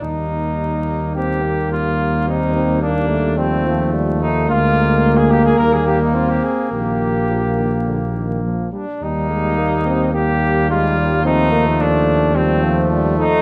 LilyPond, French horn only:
\new Staff \with { instrumentName = "French horn" } { \time 4/4 \key ees \major \tempo 4 = 107 r2 c'8 bes4. | c'8 c'8 bes8 a8 g8 f8 g8 a8 | bes2. c'4 | bes2.~ bes8 r8 |
g8 aes8 bes8 c'8 bes4 aes8 g8 | c'8 bes8 a4 g8 f8 g8 a8 | }